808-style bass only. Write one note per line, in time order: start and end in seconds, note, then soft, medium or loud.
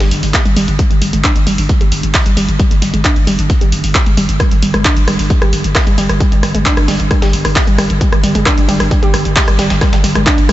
0.00 0.11 G1 medium
0.11 0.22 G1 loud
0.23 0.34 G1 medium
0.45 0.56 G1 medium
0.56 0.67 G1 medium
0.68 0.79 G1 medium
0.91 1.01 G1 medium
1.02 1.12 G1 loud
1.13 1.24 G1 medium
1.36 1.46 G1 medium
1.47 1.58 G1 loud
1.58 1.69 G1 medium
1.81 1.91 G1 medium
1.92 2.03 G1 loud
2.03 2.14 G1 medium
2.26 2.36 G1 medium
2.37 2.48 G1 medium
2.48 2.59 G1 medium
2.71 2.81 G1 medium
2.82 2.93 G1 medium
2.94 3.04 G1 medium
3.16 3.27 G1 medium
3.27 3.38 G1 loud
3.39 3.50 G1 medium
3.61 3.72 G1 medium
3.72 3.83 G1 loud
3.84 3.95 G1 medium
4.06 4.17 G1 medium
4.17 4.28 G1 medium
4.29 4.40 G1 medium
4.51 4.62 G1 medium
4.62 4.73 G1 loud
4.74 4.85 G1 medium
4.97 5.07 G1 medium
5.08 5.19 G1 loud
5.19 5.30 G1 medium
5.42 5.52 G1 medium
5.53 5.64 G1 loud
5.64 5.75 G1 medium
5.87 5.97 G1 medium
5.98 6.09 G1 medium
6.09 6.20 G1 medium
6.32 6.42 G1 medium
6.43 6.54 G1 loud
6.55 6.65 G1 medium
6.77 6.88 G1 medium
6.88 6.99 G1 loud
7.00 7.11 G1 medium
7.22 7.33 G1 medium
7.33 7.44 G1 loud
7.45 7.56 G1 medium
7.67 7.78 G1 medium
7.78 7.89 G1 medium
7.90 8.01 G1 medium
8.13 8.23 G1 medium
8.24 8.34 G1 loud
8.35 8.46 G1 medium
8.58 8.68 G1 medium
8.69 8.80 G1 loud
8.80 8.91 G1 medium
9.03 9.13 G1 medium
9.14 9.25 G1 loud
9.25 9.36 G1 medium
9.48 9.58 G1 medium
9.59 9.70 G1 medium
9.70 9.81 G1 medium
9.93 10.03 G1 medium
10.04 10.15 G1 loud
10.15 10.26 G1 medium
10.38 10.48 G1 medium
10.49 10.53 G1 loud